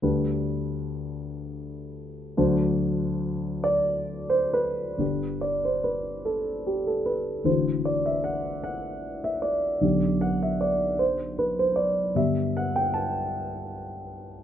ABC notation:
X:1
M:6/8
L:1/16
Q:3/8=51
K:G
V:1 name="Grand piano"
z12 | z6 d3 c B2- | B2 d c B2 A2 G A B2 | c2 d e f2 f3 e d2- |
d2 f e d2 c2 B c d2 | e2 f g a2 z6 |]
V:2 name="Grand piano"
[D,,G,DB]12 | [D,,F,Dc]12 | [G,,,D,DG]12 | [A,,,D,DF]12 |
[B,,,D,DG]12 | [G,,D,B,G]12 |]